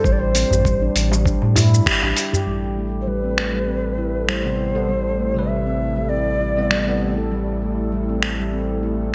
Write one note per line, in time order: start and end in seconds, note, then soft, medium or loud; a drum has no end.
0.04 0.44 A1 medium
0.04 0.20 G3 medium
0.04 0.14 C5 medium
0.04 kick loud
0.04 shaker soft
0.12 0.21 D5 medium
0.20 0.95 C5 medium
0.35 0.50 C4 medium
0.35 open hi-hat medium
0.35 shaker medium
0.51 0.90 A1 medium
0.51 darbuka dum medium
0.51 shaker soft
0.65 0.81 G3 medium
0.65 kick loud
0.65 shaker soft
0.82 1.10 D4 medium
0.95 1.35 A1 medium
0.95 open hi-hat medium
0.95 darbuka ka soft
0.95 shaker medium
1.12 1.25 G3 loud
1.12 darbuka tek medium
1.12 shaker soft
1.26 1.41 D4 medium
1.26 kick loud
1.26 shaker soft
1.42 1.80 A2 loud
1.42 darbuka ka medium
1.56 1.72 E4 medium
1.56 open hi-hat medium
1.56 darbuka ka medium
1.56 darbuka tek medium
1.56 darbuka dum medium
1.56 shaker medium
1.74 shaker soft
1.86 2.01 G4 medium
1.86 finger snap medium
1.86 kick loud
1.86 shaker soft
2.02 2.13 A1 medium
2.02 2.16 D4 medium
2.02 darbuka ka medium
2.02 darbuka tek medium
2.17 open hi-hat medium
2.17 darbuka ka medium
2.17 shaker medium
2.33 2.46 G4 loud
2.33 darbuka dum medium
2.33 shaker soft
2.47 9.15 A1 medium
2.47 2.62 G3 medium
2.47 9.15 A3 medium
2.47 9.15 E4 medium
2.47 7.28 A4 medium
2.77 2.93 A3 medium
3.01 3.09 C5 medium
3.07 3.23 G3 medium
3.07 4.29 B4 medium
3.24 3.53 C4 medium
3.38 finger snap medium
3.54 3.67 G3 medium
3.68 3.84 C4 medium
3.98 4.14 E4 medium
4.28 4.44 G3 medium
4.28 5.50 C5 medium
4.28 finger snap medium
4.44 4.71 C3 medium
4.44 4.71 G3 medium
4.44 4.72 B3 medium
4.44 4.74 C4 medium
4.74 4.90 C3 medium
4.74 4.90 G3 medium
4.74 4.91 B3 medium
4.74 4.87 A4 medium
4.89 5.05 G3 medium
5.19 5.35 A3 medium
5.34 6.52 C3 medium
5.34 6.54 G3 medium
5.39 6.55 B4 medium
5.48 5.65 G3 medium
5.48 6.10 E5 medium
5.66 5.95 C4 medium
5.96 6.09 G3 medium
6.09 6.26 C4 medium
6.09 7.00 D5 medium
6.40 6.56 E4 medium
6.56 6.83 C3 medium
6.56 6.83 G3 medium
6.56 6.84 B3 medium
6.71 6.87 G3 medium
6.71 finger snap medium
6.86 7.13 C3 medium
6.86 7.13 G3 medium
6.86 7.14 B3 medium
6.86 7.16 C4 medium
7.18 7.30 A4 medium
7.30 7.47 G3 medium
7.30 9.15 A4 medium
7.62 7.78 A3 medium
7.92 8.08 G3 medium
8.09 8.38 C4 medium
8.23 finger snap medium
8.39 8.52 G3 medium
8.53 8.69 C4 medium
8.83 8.99 E4 medium